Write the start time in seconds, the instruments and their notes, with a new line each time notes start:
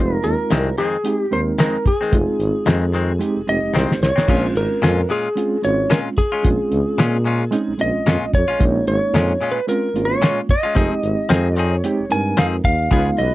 Already playing: tuba F1, reed electric piano G#3 C4 D#4 F4, electric slide guitar C5
0.14 electric slide guitar A#4
0.23 tuba D#2, electric slide guitar A#4, closed hi-hat
0.51 tuba C2, clean electric guitar F2 D#3 G#3 C4, snare, closed hi-hat
0.78 clean electric guitar F2 D#3 G#3 C4, electric slide guitar G#4, closed hi-hat
1.04 reed electric piano G#3 C4 D#4 G4, closed hi-hat
1.18 electric slide guitar G4
1.31 tuba D#2, reed electric piano G#3 C4 D#4 A#4, electric slide guitar C5, closed hi-hat
1.58 clean electric guitar F2 D#3 G#3 C4, electric slide guitar A#4, snare, closed hi-hat
1.86 electric slide guitar G#4, kick, closed hi-hat
2.01 clean electric guitar D#3 G#3 C4
2.12 tuba F1, reed electric piano G#3 C4 D#4 F4, kick, closed hi-hat
2.39 tuba G#1, closed hi-hat
2.66 clean electric guitar F2 D#3 G#3 C4, tuba F2, snare, closed hi-hat
2.92 clean electric guitar F2 D#3 G#3 C4, closed hi-hat
3.19 reed electric piano G#3 C4 D#4 G4, closed hi-hat
3.36 tuba F1
3.47 tuba F1, reed electric piano G#3 C4 D#4 G4, electric slide guitar D#5, closed hi-hat
3.62 tuba F1
3.74 tuba C2, clean electric guitar F2 D#3 G#3 C4, electric slide guitar C5, snare
3.89 tuba F1, snare
4.01 tuba C2, electric slide guitar C#5, snare
4.16 tuba F1, clean electric guitar D#3 G#3 C4, snare
4.28 tuba A#1, clean electric guitar A#2 G#3 C#4 F4, reed electric piano G#3 C4 C#4 F4, kick, closed hi-hat, crash
4.39 electric slide guitar C5
4.55 tuba G#1, electric slide guitar A#4, closed hi-hat
4.82 tuba F2, clean electric guitar A#2 G#3 C#4 F4, snare, closed hi-hat
5.09 clean electric guitar A#2 G#3 C#4 F4, electric slide guitar G#4, closed hi-hat
5.35 reed electric piano G#3 C4 C#4 F4, closed hi-hat
5.62 tuba G#1, reed electric piano G#3 C4 C#4 F4, electric slide guitar C#5, closed hi-hat
5.90 clean electric guitar A#2 G#3 C#4 F4, electric slide guitar A#4, snare, closed hi-hat
6.17 electric slide guitar G#4, kick, closed hi-hat
6.32 clean electric guitar G#3 C#4 F4
6.43 tuba A#1, reed electric piano G#3 C4 C#4 F4, kick, closed hi-hat
6.72 tuba C#2, closed hi-hat
6.98 clean electric guitar A#2 G#3 C#4 F4, tuba A#2, snare, closed hi-hat
7.25 clean electric guitar A#2 G#3 C#4 F4, closed hi-hat
7.51 reed electric piano G#3 C4 C#4 D#4, closed hi-hat
7.68 tuba A#1
7.78 tuba A#1, reed electric piano G#3 C4 C#4 F4, electric slide guitar D#5, closed hi-hat
7.94 tuba A#1
8.06 tuba F2, clean electric guitar A#2 G#3 C#4 F4, snare, closed hi-hat
8.21 tuba A#1
8.33 tuba F2, electric slide guitar C#5, kick, closed hi-hat
8.48 tuba A#1, clean electric guitar G#3 C#4 F4
8.59 tuba A#1, reed electric piano G#3 A#3 C#4 D#4, kick, closed hi-hat
8.87 tuba G#1, electric slide guitar C#5, closed hi-hat
9.13 tuba F2, clean electric guitar A#2 G#3 C#4 F4, snare, closed hi-hat
9.41 clean electric guitar A#2 G#3 C#4 F4, closed hi-hat
9.52 electric slide guitar B4
9.67 reed electric piano G#3 C4 C#4 F4, electric slide guitar A#4, closed hi-hat
9.95 tuba G#1, reed electric piano G#3 A#3 C#4 F4, closed hi-hat
10.05 electric slide guitar C#5
10.22 clean electric guitar A#2 G#3 C#4 F4, snare, closed hi-hat
10.49 electric slide guitar D#5, kick, closed hi-hat
10.63 clean electric guitar G#3 C#4 F4
10.75 tuba F1, clean electric guitar F3 C4 D#4 G#4, reed electric piano G#3 C4 D#4 G4, kick, closed hi-hat
11.03 tuba G#1, closed hi-hat
11.29 tuba F2, clean electric guitar F3 C4 D#4 G#4, snare, closed hi-hat
11.56 clean electric guitar F3 C4 D#4 G#4, closed hi-hat
11.61 electric slide guitar C#5
11.84 reed electric piano G#3 C4 D#4 G4, closed hi-hat
11.99 tuba F1
12.09 tuba G2, reed electric piano G#3 C4 D#4 A#4, electric slide guitar G#5, closed hi-hat
12.37 tuba F2, clean electric guitar F3 C4 D#4 G#4, electric slide guitar F5, snare, closed hi-hat
12.64 tuba D#2, electric slide guitar F5, kick, closed hi-hat
12.90 tuba C#2, clean electric guitar C#3 B3 F4 G#4, reed electric piano G#3 B3 D#4 F4, horn section C#4 F4 B4, kick, closed hi-hat
13.16 tuba B1, horn section C#4 F4 B4, electric slide guitar D#5, closed hi-hat